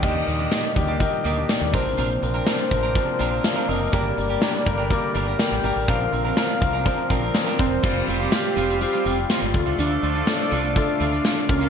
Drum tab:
CC |x---------------|----------------|----------------|----------------|
HH |--x-x-x-x-x-x-o-|x-x-x-x-x-x-x-o-|x-x-x-x-x-x-x-o-|x-x-x-x-x-x-x-x-|
TB |----------------|----------------|----x-------x---|----x-------x---|
SD |----o-------o---|----o-------o---|----o-------o---|----o-------o---|
BD |o-----o-o-----o-|------o-o-------|o-----o-o-------|o-----o-o-o---o-|

CC |x---------------|----------------|
HH |--x-x-xxx-x-x-x-|x-x-x-x-x-x-x-x-|
TB |----x-------x---|----x-------x---|
SD |----o-------o---|----o-------o---|
BD |o-------------o-|--------o-----o-|